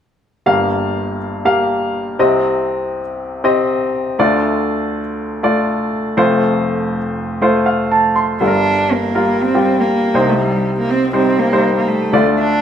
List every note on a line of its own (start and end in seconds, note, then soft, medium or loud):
0.46 2.16 G1 soft
0.46 2.16 G2 medium
0.46 1.17 A#3 medium
0.46 1.17 G4 soft
0.46 1.17 F5 medium
1.45 2.16 A#3 medium
1.45 2.16 G4 medium
1.45 2.16 F5 medium
2.19 4.15 C2 medium
2.19 4.15 C3 soft
2.19 3.00 C4 medium
2.19 3.00 G4 medium
2.19 3.00 D#5 medium
3.44 4.15 C4 medium
3.44 4.15 G4 medium
3.44 4.15 D#5 medium
4.19 6.14 D2 medium
4.19 6.14 D3 medium
4.19 4.99 A3 medium
4.19 4.99 F4 medium
4.19 4.99 D5 medium
5.43 6.14 A3 medium
5.43 6.14 F4 medium
5.43 6.14 D5 medium
6.17 8.12 F1 medium
6.17 8.12 F2 medium
6.17 6.97 A3 medium
6.17 6.97 F4 medium
6.17 6.98 C5 medium
7.42 8.12 A3 medium
7.42 8.13 F4 medium
7.42 8.13 C5 medium
7.66 7.89 F5 medium
7.91 8.14 A5 medium
8.16 8.39 C6 medium
8.40 10.11 G1 soft
8.40 10.10 G2 soft
8.40 8.94 G3 medium
8.40 8.94 D4 medium
8.40 8.94 F4 soft
8.40 8.47 A4 soft
8.47 8.97 A#4 medium
8.92 9.43 A#3 medium
9.15 9.42 G3 medium
9.15 9.42 F4 medium
9.15 9.42 A#4 medium
9.42 9.82 C4 medium
9.55 10.13 G3 medium
9.55 10.14 F4 soft
9.55 10.15 G4 medium
9.80 10.31 A#3 medium
10.14 12.09 C2 soft
10.14 12.09 C3 soft
10.14 10.95 G3 medium
10.14 10.95 D#4 medium
10.14 10.95 C5 medium
10.29 10.40 A3 medium
10.41 10.76 G3 medium
10.79 10.92 A#3 medium
10.90 11.14 C4 medium
11.13 11.40 G3 medium
11.13 11.41 C4 medium
11.13 11.40 D#4 soft
11.13 11.40 C5 medium
11.39 11.77 A#3 medium
11.52 12.13 G3 medium
11.52 12.13 D#4 soft
11.52 12.13 C5 medium
11.78 11.90 A#3 medium
11.88 12.27 A3 medium
12.13 12.62 D2 soft
12.13 12.62 D3 soft
12.13 12.62 A3 medium
12.13 12.62 F4 medium
12.13 12.62 D5 medium
12.39 12.62 D4 medium